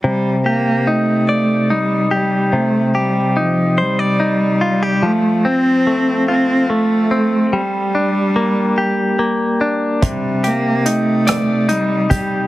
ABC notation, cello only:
X:1
M:6/8
L:1/8
Q:3/8=48
K:Cdor
V:1 name="Cello" clef=bass
G, B, A,2 G, G, | A, G, F, G,3 | A, C2 C A,2 | G,4 z2 |
G, B, A,2 G, G, |]